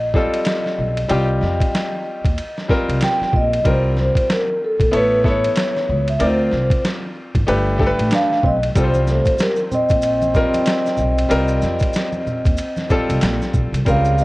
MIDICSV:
0, 0, Header, 1, 7, 480
1, 0, Start_track
1, 0, Tempo, 638298
1, 826, Time_signature, 4, 2, 24, 8
1, 10711, End_track
2, 0, Start_track
2, 0, Title_t, "Vibraphone"
2, 0, Program_c, 0, 11
2, 0, Note_on_c, 0, 75, 72
2, 2237, Note_off_c, 0, 75, 0
2, 2284, Note_on_c, 0, 79, 91
2, 2522, Note_off_c, 0, 79, 0
2, 2528, Note_on_c, 0, 75, 85
2, 2764, Note_off_c, 0, 75, 0
2, 2765, Note_on_c, 0, 72, 88
2, 2869, Note_off_c, 0, 72, 0
2, 3010, Note_on_c, 0, 72, 83
2, 3245, Note_off_c, 0, 72, 0
2, 3248, Note_on_c, 0, 70, 74
2, 3461, Note_off_c, 0, 70, 0
2, 3492, Note_on_c, 0, 69, 77
2, 3703, Note_off_c, 0, 69, 0
2, 3726, Note_on_c, 0, 71, 87
2, 3940, Note_off_c, 0, 71, 0
2, 3972, Note_on_c, 0, 73, 82
2, 4549, Note_off_c, 0, 73, 0
2, 4584, Note_on_c, 0, 76, 71
2, 4669, Note_off_c, 0, 76, 0
2, 4690, Note_on_c, 0, 72, 67
2, 5128, Note_off_c, 0, 72, 0
2, 6127, Note_on_c, 0, 77, 96
2, 6361, Note_on_c, 0, 75, 88
2, 6363, Note_off_c, 0, 77, 0
2, 6466, Note_off_c, 0, 75, 0
2, 6602, Note_on_c, 0, 72, 82
2, 6707, Note_off_c, 0, 72, 0
2, 6849, Note_on_c, 0, 72, 83
2, 7062, Note_off_c, 0, 72, 0
2, 7085, Note_on_c, 0, 70, 89
2, 7188, Note_off_c, 0, 70, 0
2, 7330, Note_on_c, 0, 75, 83
2, 9928, Note_off_c, 0, 75, 0
2, 10449, Note_on_c, 0, 77, 91
2, 10684, Note_off_c, 0, 77, 0
2, 10711, End_track
3, 0, Start_track
3, 0, Title_t, "Grand piano"
3, 0, Program_c, 1, 0
3, 104, Note_on_c, 1, 55, 71
3, 108, Note_on_c, 1, 60, 62
3, 112, Note_on_c, 1, 65, 62
3, 119, Note_on_c, 1, 69, 73
3, 745, Note_off_c, 1, 55, 0
3, 747, Note_off_c, 1, 60, 0
3, 749, Note_off_c, 1, 65, 0
3, 752, Note_off_c, 1, 69, 0
3, 815, Note_on_c, 1, 55, 86
3, 820, Note_on_c, 1, 60, 70
3, 825, Note_on_c, 1, 65, 81
3, 832, Note_on_c, 1, 67, 89
3, 1691, Note_off_c, 1, 55, 0
3, 1694, Note_off_c, 1, 60, 0
3, 1697, Note_off_c, 1, 65, 0
3, 1700, Note_off_c, 1, 67, 0
3, 2017, Note_on_c, 1, 55, 74
3, 2025, Note_on_c, 1, 60, 79
3, 2029, Note_on_c, 1, 65, 80
3, 2033, Note_on_c, 1, 70, 89
3, 2661, Note_off_c, 1, 55, 0
3, 2666, Note_off_c, 1, 60, 0
3, 2667, Note_off_c, 1, 65, 0
3, 2670, Note_off_c, 1, 70, 0
3, 2738, Note_on_c, 1, 55, 73
3, 2746, Note_on_c, 1, 60, 64
3, 2750, Note_on_c, 1, 65, 64
3, 2755, Note_on_c, 1, 70, 74
3, 3613, Note_off_c, 1, 55, 0
3, 3617, Note_off_c, 1, 60, 0
3, 3619, Note_off_c, 1, 65, 0
3, 3622, Note_off_c, 1, 70, 0
3, 3695, Note_on_c, 1, 59, 73
3, 3698, Note_on_c, 1, 64, 66
3, 3705, Note_on_c, 1, 69, 66
3, 3714, Note_on_c, 1, 73, 80
3, 3918, Note_off_c, 1, 59, 0
3, 3920, Note_off_c, 1, 64, 0
3, 3923, Note_off_c, 1, 69, 0
3, 3928, Note_off_c, 1, 73, 0
3, 3941, Note_on_c, 1, 59, 73
3, 3942, Note_on_c, 1, 64, 62
3, 3948, Note_on_c, 1, 69, 64
3, 3957, Note_on_c, 1, 73, 73
3, 4583, Note_off_c, 1, 59, 0
3, 4584, Note_off_c, 1, 64, 0
3, 4587, Note_off_c, 1, 69, 0
3, 4591, Note_off_c, 1, 73, 0
3, 4658, Note_on_c, 1, 60, 68
3, 4659, Note_on_c, 1, 63, 49
3, 4666, Note_on_c, 1, 70, 58
3, 4669, Note_on_c, 1, 74, 79
3, 4709, Note_on_c, 1, 65, 63
3, 4720, Note_off_c, 1, 63, 0
3, 5533, Note_off_c, 1, 60, 0
3, 5537, Note_off_c, 1, 70, 0
3, 5539, Note_off_c, 1, 74, 0
3, 5558, Note_off_c, 1, 65, 0
3, 5614, Note_on_c, 1, 57, 84
3, 5619, Note_on_c, 1, 62, 70
3, 5623, Note_on_c, 1, 67, 80
3, 5628, Note_on_c, 1, 71, 91
3, 5837, Note_off_c, 1, 57, 0
3, 5840, Note_off_c, 1, 62, 0
3, 5842, Note_off_c, 1, 67, 0
3, 5845, Note_off_c, 1, 71, 0
3, 5848, Note_on_c, 1, 57, 83
3, 5854, Note_on_c, 1, 62, 73
3, 5864, Note_on_c, 1, 67, 75
3, 5868, Note_on_c, 1, 69, 72
3, 5916, Note_on_c, 1, 71, 94
3, 5924, Note_off_c, 1, 69, 0
3, 6497, Note_off_c, 1, 57, 0
3, 6500, Note_off_c, 1, 62, 0
3, 6505, Note_off_c, 1, 67, 0
3, 6531, Note_off_c, 1, 71, 0
3, 6581, Note_on_c, 1, 55, 76
3, 6582, Note_on_c, 1, 60, 71
3, 6589, Note_on_c, 1, 65, 66
3, 6596, Note_on_c, 1, 69, 57
3, 6644, Note_on_c, 1, 72, 73
3, 6648, Note_off_c, 1, 69, 0
3, 7454, Note_off_c, 1, 55, 0
3, 7455, Note_off_c, 1, 60, 0
3, 7459, Note_off_c, 1, 65, 0
3, 7486, Note_off_c, 1, 72, 0
3, 7774, Note_on_c, 1, 55, 72
3, 7784, Note_on_c, 1, 60, 64
3, 7789, Note_on_c, 1, 65, 64
3, 7793, Note_on_c, 1, 70, 82
3, 8420, Note_off_c, 1, 55, 0
3, 8425, Note_off_c, 1, 60, 0
3, 8427, Note_off_c, 1, 65, 0
3, 8430, Note_off_c, 1, 70, 0
3, 8489, Note_on_c, 1, 55, 89
3, 8497, Note_on_c, 1, 60, 85
3, 8498, Note_on_c, 1, 65, 80
3, 8507, Note_on_c, 1, 70, 101
3, 9369, Note_off_c, 1, 55, 0
3, 9372, Note_off_c, 1, 60, 0
3, 9373, Note_off_c, 1, 65, 0
3, 9377, Note_off_c, 1, 70, 0
3, 9696, Note_on_c, 1, 55, 74
3, 9704, Note_on_c, 1, 60, 78
3, 9704, Note_on_c, 1, 65, 74
3, 9711, Note_on_c, 1, 69, 89
3, 10341, Note_off_c, 1, 55, 0
3, 10345, Note_off_c, 1, 60, 0
3, 10345, Note_off_c, 1, 65, 0
3, 10349, Note_off_c, 1, 69, 0
3, 10415, Note_on_c, 1, 55, 71
3, 10420, Note_on_c, 1, 60, 65
3, 10427, Note_on_c, 1, 65, 62
3, 10433, Note_on_c, 1, 70, 80
3, 10711, Note_off_c, 1, 55, 0
3, 10711, Note_off_c, 1, 60, 0
3, 10711, Note_off_c, 1, 65, 0
3, 10711, Note_off_c, 1, 70, 0
3, 10711, End_track
4, 0, Start_track
4, 0, Title_t, "Trombone"
4, 0, Program_c, 2, 57
4, 6100, Note_on_c, 2, 62, 87
4, 6326, Note_off_c, 2, 62, 0
4, 6344, Note_on_c, 2, 60, 91
4, 6453, Note_off_c, 2, 60, 0
4, 6585, Note_on_c, 2, 55, 83
4, 6693, Note_off_c, 2, 55, 0
4, 6827, Note_on_c, 2, 57, 73
4, 7050, Note_off_c, 2, 57, 0
4, 7064, Note_on_c, 2, 55, 65
4, 7172, Note_off_c, 2, 55, 0
4, 7305, Note_on_c, 2, 60, 93
4, 9915, Note_off_c, 2, 60, 0
4, 10421, Note_on_c, 2, 49, 87
4, 10647, Note_off_c, 2, 49, 0
4, 10670, Note_on_c, 2, 48, 81
4, 10711, Note_off_c, 2, 48, 0
4, 10711, End_track
5, 0, Start_track
5, 0, Title_t, "Upright bass"
5, 0, Program_c, 3, 32
5, 0, Note_on_c, 3, 34, 71
5, 173, Note_off_c, 3, 34, 0
5, 589, Note_on_c, 3, 35, 80
5, 789, Note_off_c, 3, 35, 0
5, 830, Note_on_c, 3, 36, 94
5, 1030, Note_off_c, 3, 36, 0
5, 1068, Note_on_c, 3, 41, 84
5, 1185, Note_off_c, 3, 41, 0
5, 1691, Note_on_c, 3, 39, 68
5, 1773, Note_off_c, 3, 39, 0
5, 2168, Note_on_c, 3, 36, 78
5, 2251, Note_off_c, 3, 36, 0
5, 2507, Note_on_c, 3, 34, 84
5, 2709, Note_off_c, 3, 34, 0
5, 2748, Note_on_c, 3, 36, 97
5, 3067, Note_off_c, 3, 36, 0
5, 3609, Note_on_c, 3, 34, 77
5, 3692, Note_off_c, 3, 34, 0
5, 3709, Note_on_c, 3, 33, 84
5, 4112, Note_off_c, 3, 33, 0
5, 4432, Note_on_c, 3, 37, 83
5, 4631, Note_off_c, 3, 37, 0
5, 4669, Note_on_c, 3, 38, 103
5, 4870, Note_off_c, 3, 38, 0
5, 4910, Note_on_c, 3, 36, 76
5, 5026, Note_off_c, 3, 36, 0
5, 5527, Note_on_c, 3, 32, 80
5, 5611, Note_off_c, 3, 32, 0
5, 5626, Note_on_c, 3, 31, 84
5, 5946, Note_off_c, 3, 31, 0
5, 6006, Note_on_c, 3, 33, 90
5, 6090, Note_off_c, 3, 33, 0
5, 6345, Note_on_c, 3, 35, 82
5, 6547, Note_off_c, 3, 35, 0
5, 6585, Note_on_c, 3, 36, 105
5, 6905, Note_off_c, 3, 36, 0
5, 7448, Note_on_c, 3, 34, 80
5, 7851, Note_off_c, 3, 34, 0
5, 8264, Note_on_c, 3, 35, 78
5, 8467, Note_off_c, 3, 35, 0
5, 8505, Note_on_c, 3, 36, 93
5, 8707, Note_off_c, 3, 36, 0
5, 8746, Note_on_c, 3, 41, 84
5, 8864, Note_off_c, 3, 41, 0
5, 9368, Note_on_c, 3, 39, 80
5, 9451, Note_off_c, 3, 39, 0
5, 9845, Note_on_c, 3, 36, 83
5, 9929, Note_off_c, 3, 36, 0
5, 9947, Note_on_c, 3, 34, 100
5, 10064, Note_off_c, 3, 34, 0
5, 10186, Note_on_c, 3, 35, 80
5, 10304, Note_off_c, 3, 35, 0
5, 10322, Note_on_c, 3, 36, 82
5, 10408, Note_off_c, 3, 36, 0
5, 10427, Note_on_c, 3, 37, 99
5, 10711, Note_off_c, 3, 37, 0
5, 10711, End_track
6, 0, Start_track
6, 0, Title_t, "Muted upright bass strokes"
6, 2413, Note_on_c, 9, 29, 45
6, 2488, Note_off_c, 9, 29, 0
6, 10711, End_track
7, 0, Start_track
7, 0, Title_t, "Drums"
7, 105, Note_on_c, 9, 36, 83
7, 112, Note_on_c, 9, 38, 28
7, 181, Note_off_c, 9, 36, 0
7, 188, Note_off_c, 9, 38, 0
7, 252, Note_on_c, 9, 51, 51
7, 327, Note_off_c, 9, 51, 0
7, 337, Note_on_c, 9, 44, 51
7, 337, Note_on_c, 9, 51, 69
7, 350, Note_on_c, 9, 38, 105
7, 413, Note_off_c, 9, 44, 0
7, 413, Note_off_c, 9, 51, 0
7, 425, Note_off_c, 9, 38, 0
7, 496, Note_on_c, 9, 38, 30
7, 572, Note_off_c, 9, 38, 0
7, 731, Note_on_c, 9, 51, 47
7, 806, Note_off_c, 9, 51, 0
7, 823, Note_on_c, 9, 51, 66
7, 898, Note_off_c, 9, 51, 0
7, 1060, Note_on_c, 9, 38, 28
7, 1135, Note_off_c, 9, 38, 0
7, 1205, Note_on_c, 9, 36, 81
7, 1213, Note_on_c, 9, 51, 57
7, 1280, Note_off_c, 9, 36, 0
7, 1288, Note_off_c, 9, 51, 0
7, 1314, Note_on_c, 9, 38, 93
7, 1314, Note_on_c, 9, 44, 44
7, 1314, Note_on_c, 9, 51, 62
7, 1389, Note_off_c, 9, 44, 0
7, 1389, Note_off_c, 9, 51, 0
7, 1390, Note_off_c, 9, 38, 0
7, 1689, Note_on_c, 9, 36, 92
7, 1695, Note_on_c, 9, 51, 53
7, 1764, Note_off_c, 9, 36, 0
7, 1770, Note_off_c, 9, 51, 0
7, 1789, Note_on_c, 9, 51, 66
7, 1864, Note_off_c, 9, 51, 0
7, 1938, Note_on_c, 9, 38, 33
7, 2013, Note_off_c, 9, 38, 0
7, 2026, Note_on_c, 9, 36, 85
7, 2036, Note_on_c, 9, 38, 32
7, 2101, Note_off_c, 9, 36, 0
7, 2111, Note_off_c, 9, 38, 0
7, 2177, Note_on_c, 9, 51, 49
7, 2252, Note_off_c, 9, 51, 0
7, 2262, Note_on_c, 9, 44, 46
7, 2262, Note_on_c, 9, 51, 69
7, 2274, Note_on_c, 9, 38, 110
7, 2337, Note_off_c, 9, 44, 0
7, 2337, Note_off_c, 9, 51, 0
7, 2349, Note_off_c, 9, 38, 0
7, 2421, Note_on_c, 9, 38, 29
7, 2496, Note_off_c, 9, 38, 0
7, 2506, Note_on_c, 9, 36, 88
7, 2581, Note_off_c, 9, 36, 0
7, 2658, Note_on_c, 9, 51, 47
7, 2733, Note_off_c, 9, 51, 0
7, 2746, Note_on_c, 9, 36, 99
7, 2747, Note_on_c, 9, 51, 68
7, 2821, Note_off_c, 9, 36, 0
7, 2822, Note_off_c, 9, 51, 0
7, 2984, Note_on_c, 9, 38, 28
7, 3059, Note_off_c, 9, 38, 0
7, 3124, Note_on_c, 9, 36, 80
7, 3135, Note_on_c, 9, 51, 63
7, 3199, Note_off_c, 9, 36, 0
7, 3210, Note_off_c, 9, 51, 0
7, 3233, Note_on_c, 9, 44, 41
7, 3233, Note_on_c, 9, 51, 66
7, 3234, Note_on_c, 9, 38, 101
7, 3308, Note_off_c, 9, 44, 0
7, 3308, Note_off_c, 9, 51, 0
7, 3309, Note_off_c, 9, 38, 0
7, 3607, Note_on_c, 9, 36, 87
7, 3614, Note_on_c, 9, 51, 52
7, 3682, Note_off_c, 9, 36, 0
7, 3689, Note_off_c, 9, 51, 0
7, 3707, Note_on_c, 9, 51, 73
7, 3782, Note_off_c, 9, 51, 0
7, 3944, Note_on_c, 9, 36, 86
7, 3954, Note_on_c, 9, 38, 30
7, 4019, Note_off_c, 9, 36, 0
7, 4029, Note_off_c, 9, 38, 0
7, 4094, Note_on_c, 9, 51, 49
7, 4170, Note_off_c, 9, 51, 0
7, 4179, Note_on_c, 9, 44, 54
7, 4179, Note_on_c, 9, 51, 69
7, 4191, Note_on_c, 9, 38, 116
7, 4255, Note_off_c, 9, 44, 0
7, 4255, Note_off_c, 9, 51, 0
7, 4267, Note_off_c, 9, 38, 0
7, 4335, Note_on_c, 9, 38, 34
7, 4410, Note_off_c, 9, 38, 0
7, 4572, Note_on_c, 9, 51, 46
7, 4647, Note_off_c, 9, 51, 0
7, 4664, Note_on_c, 9, 51, 72
7, 4740, Note_off_c, 9, 51, 0
7, 4901, Note_on_c, 9, 38, 30
7, 4976, Note_off_c, 9, 38, 0
7, 5041, Note_on_c, 9, 36, 91
7, 5049, Note_on_c, 9, 51, 55
7, 5116, Note_off_c, 9, 36, 0
7, 5124, Note_off_c, 9, 51, 0
7, 5149, Note_on_c, 9, 44, 46
7, 5149, Note_on_c, 9, 51, 63
7, 5150, Note_on_c, 9, 38, 100
7, 5225, Note_off_c, 9, 38, 0
7, 5225, Note_off_c, 9, 44, 0
7, 5225, Note_off_c, 9, 51, 0
7, 5525, Note_on_c, 9, 36, 91
7, 5527, Note_on_c, 9, 51, 49
7, 5600, Note_off_c, 9, 36, 0
7, 5602, Note_off_c, 9, 51, 0
7, 5623, Note_on_c, 9, 51, 72
7, 5699, Note_off_c, 9, 51, 0
7, 5862, Note_on_c, 9, 36, 83
7, 5870, Note_on_c, 9, 38, 32
7, 5937, Note_off_c, 9, 36, 0
7, 5945, Note_off_c, 9, 38, 0
7, 6011, Note_on_c, 9, 51, 47
7, 6087, Note_off_c, 9, 51, 0
7, 6099, Note_on_c, 9, 44, 51
7, 6099, Note_on_c, 9, 51, 67
7, 6111, Note_on_c, 9, 38, 121
7, 6174, Note_off_c, 9, 44, 0
7, 6174, Note_off_c, 9, 51, 0
7, 6186, Note_off_c, 9, 38, 0
7, 6254, Note_on_c, 9, 38, 31
7, 6330, Note_off_c, 9, 38, 0
7, 6343, Note_on_c, 9, 36, 87
7, 6418, Note_off_c, 9, 36, 0
7, 6491, Note_on_c, 9, 51, 46
7, 6566, Note_off_c, 9, 51, 0
7, 6583, Note_on_c, 9, 51, 66
7, 6584, Note_on_c, 9, 36, 112
7, 6589, Note_on_c, 9, 82, 60
7, 6658, Note_off_c, 9, 51, 0
7, 6659, Note_off_c, 9, 36, 0
7, 6664, Note_off_c, 9, 82, 0
7, 6723, Note_on_c, 9, 63, 47
7, 6723, Note_on_c, 9, 82, 43
7, 6798, Note_off_c, 9, 63, 0
7, 6798, Note_off_c, 9, 82, 0
7, 6821, Note_on_c, 9, 82, 44
7, 6824, Note_on_c, 9, 38, 30
7, 6896, Note_off_c, 9, 82, 0
7, 6899, Note_off_c, 9, 38, 0
7, 6956, Note_on_c, 9, 82, 40
7, 6962, Note_on_c, 9, 36, 88
7, 6970, Note_on_c, 9, 51, 60
7, 7032, Note_off_c, 9, 82, 0
7, 7037, Note_off_c, 9, 36, 0
7, 7045, Note_off_c, 9, 51, 0
7, 7058, Note_on_c, 9, 82, 60
7, 7073, Note_on_c, 9, 38, 106
7, 7073, Note_on_c, 9, 44, 44
7, 7073, Note_on_c, 9, 51, 64
7, 7133, Note_off_c, 9, 82, 0
7, 7148, Note_off_c, 9, 44, 0
7, 7148, Note_off_c, 9, 51, 0
7, 7149, Note_off_c, 9, 38, 0
7, 7193, Note_on_c, 9, 82, 34
7, 7268, Note_off_c, 9, 82, 0
7, 7309, Note_on_c, 9, 64, 63
7, 7309, Note_on_c, 9, 82, 45
7, 7384, Note_off_c, 9, 64, 0
7, 7384, Note_off_c, 9, 82, 0
7, 7438, Note_on_c, 9, 82, 51
7, 7446, Note_on_c, 9, 36, 93
7, 7452, Note_on_c, 9, 51, 57
7, 7514, Note_off_c, 9, 82, 0
7, 7522, Note_off_c, 9, 36, 0
7, 7527, Note_off_c, 9, 51, 0
7, 7534, Note_on_c, 9, 82, 63
7, 7544, Note_on_c, 9, 51, 73
7, 7610, Note_off_c, 9, 82, 0
7, 7619, Note_off_c, 9, 51, 0
7, 7684, Note_on_c, 9, 63, 60
7, 7684, Note_on_c, 9, 82, 45
7, 7760, Note_off_c, 9, 63, 0
7, 7760, Note_off_c, 9, 82, 0
7, 7779, Note_on_c, 9, 64, 59
7, 7779, Note_on_c, 9, 82, 41
7, 7782, Note_on_c, 9, 36, 82
7, 7792, Note_on_c, 9, 38, 34
7, 7855, Note_off_c, 9, 64, 0
7, 7855, Note_off_c, 9, 82, 0
7, 7857, Note_off_c, 9, 36, 0
7, 7867, Note_off_c, 9, 38, 0
7, 7926, Note_on_c, 9, 63, 64
7, 7926, Note_on_c, 9, 82, 49
7, 7929, Note_on_c, 9, 51, 48
7, 8001, Note_off_c, 9, 63, 0
7, 8001, Note_off_c, 9, 82, 0
7, 8005, Note_off_c, 9, 51, 0
7, 8016, Note_on_c, 9, 44, 52
7, 8016, Note_on_c, 9, 51, 73
7, 8019, Note_on_c, 9, 82, 56
7, 8028, Note_on_c, 9, 38, 109
7, 8091, Note_off_c, 9, 44, 0
7, 8091, Note_off_c, 9, 51, 0
7, 8095, Note_off_c, 9, 82, 0
7, 8103, Note_off_c, 9, 38, 0
7, 8168, Note_on_c, 9, 82, 41
7, 8179, Note_on_c, 9, 38, 31
7, 8243, Note_off_c, 9, 82, 0
7, 8252, Note_on_c, 9, 64, 57
7, 8252, Note_on_c, 9, 82, 41
7, 8254, Note_off_c, 9, 38, 0
7, 8327, Note_off_c, 9, 64, 0
7, 8327, Note_off_c, 9, 82, 0
7, 8408, Note_on_c, 9, 82, 38
7, 8413, Note_on_c, 9, 51, 50
7, 8483, Note_off_c, 9, 82, 0
7, 8488, Note_off_c, 9, 51, 0
7, 8505, Note_on_c, 9, 51, 72
7, 8505, Note_on_c, 9, 82, 56
7, 8581, Note_off_c, 9, 51, 0
7, 8581, Note_off_c, 9, 82, 0
7, 8635, Note_on_c, 9, 82, 49
7, 8710, Note_off_c, 9, 82, 0
7, 8738, Note_on_c, 9, 82, 47
7, 8743, Note_on_c, 9, 38, 31
7, 8813, Note_off_c, 9, 82, 0
7, 8818, Note_off_c, 9, 38, 0
7, 8871, Note_on_c, 9, 82, 40
7, 8883, Note_on_c, 9, 36, 86
7, 8894, Note_on_c, 9, 51, 62
7, 8946, Note_off_c, 9, 82, 0
7, 8958, Note_off_c, 9, 36, 0
7, 8969, Note_off_c, 9, 51, 0
7, 8975, Note_on_c, 9, 82, 68
7, 8995, Note_on_c, 9, 44, 44
7, 8995, Note_on_c, 9, 51, 66
7, 8996, Note_on_c, 9, 38, 97
7, 9050, Note_off_c, 9, 82, 0
7, 9070, Note_off_c, 9, 44, 0
7, 9070, Note_off_c, 9, 51, 0
7, 9071, Note_off_c, 9, 38, 0
7, 9118, Note_on_c, 9, 63, 57
7, 9118, Note_on_c, 9, 82, 36
7, 9193, Note_off_c, 9, 63, 0
7, 9193, Note_off_c, 9, 82, 0
7, 9227, Note_on_c, 9, 64, 63
7, 9227, Note_on_c, 9, 82, 42
7, 9303, Note_off_c, 9, 64, 0
7, 9303, Note_off_c, 9, 82, 0
7, 9365, Note_on_c, 9, 82, 44
7, 9367, Note_on_c, 9, 36, 82
7, 9375, Note_on_c, 9, 51, 51
7, 9440, Note_off_c, 9, 82, 0
7, 9442, Note_off_c, 9, 36, 0
7, 9450, Note_off_c, 9, 51, 0
7, 9455, Note_on_c, 9, 82, 58
7, 9464, Note_on_c, 9, 51, 71
7, 9530, Note_off_c, 9, 82, 0
7, 9540, Note_off_c, 9, 51, 0
7, 9601, Note_on_c, 9, 63, 64
7, 9601, Note_on_c, 9, 82, 44
7, 9612, Note_on_c, 9, 38, 34
7, 9676, Note_off_c, 9, 63, 0
7, 9676, Note_off_c, 9, 82, 0
7, 9687, Note_off_c, 9, 38, 0
7, 9701, Note_on_c, 9, 64, 52
7, 9701, Note_on_c, 9, 82, 40
7, 9704, Note_on_c, 9, 36, 81
7, 9713, Note_on_c, 9, 38, 31
7, 9777, Note_off_c, 9, 64, 0
7, 9777, Note_off_c, 9, 82, 0
7, 9779, Note_off_c, 9, 36, 0
7, 9788, Note_off_c, 9, 38, 0
7, 9850, Note_on_c, 9, 51, 53
7, 9850, Note_on_c, 9, 63, 66
7, 9850, Note_on_c, 9, 82, 44
7, 9925, Note_off_c, 9, 63, 0
7, 9925, Note_off_c, 9, 82, 0
7, 9926, Note_off_c, 9, 51, 0
7, 9937, Note_on_c, 9, 44, 57
7, 9937, Note_on_c, 9, 51, 70
7, 9943, Note_on_c, 9, 82, 56
7, 9949, Note_on_c, 9, 38, 108
7, 10012, Note_off_c, 9, 44, 0
7, 10012, Note_off_c, 9, 51, 0
7, 10019, Note_off_c, 9, 82, 0
7, 10024, Note_off_c, 9, 38, 0
7, 10090, Note_on_c, 9, 82, 38
7, 10095, Note_on_c, 9, 38, 30
7, 10166, Note_off_c, 9, 82, 0
7, 10170, Note_off_c, 9, 38, 0
7, 10181, Note_on_c, 9, 64, 60
7, 10181, Note_on_c, 9, 82, 45
7, 10183, Note_on_c, 9, 36, 85
7, 10256, Note_off_c, 9, 64, 0
7, 10256, Note_off_c, 9, 82, 0
7, 10258, Note_off_c, 9, 36, 0
7, 10335, Note_on_c, 9, 51, 52
7, 10335, Note_on_c, 9, 82, 42
7, 10410, Note_off_c, 9, 51, 0
7, 10410, Note_off_c, 9, 82, 0
7, 10424, Note_on_c, 9, 51, 69
7, 10425, Note_on_c, 9, 36, 106
7, 10434, Note_on_c, 9, 82, 59
7, 10500, Note_off_c, 9, 36, 0
7, 10500, Note_off_c, 9, 51, 0
7, 10509, Note_off_c, 9, 82, 0
7, 10564, Note_on_c, 9, 82, 48
7, 10639, Note_off_c, 9, 82, 0
7, 10664, Note_on_c, 9, 82, 40
7, 10711, Note_off_c, 9, 82, 0
7, 10711, End_track
0, 0, End_of_file